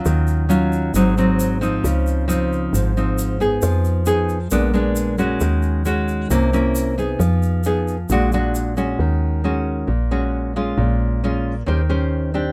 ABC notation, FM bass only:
X:1
M:4/4
L:1/8
Q:1/4=134
K:Ebm
V:1 name="FM bass" clef=bass
E,,4 A,,,4 | D,,4 A,,,4 | F,,4 B,,,4 | E,,4 =C,,4 |
F,,4 B,,,4 | E,,4 B,,,4 | B,,,4 E,,4 |]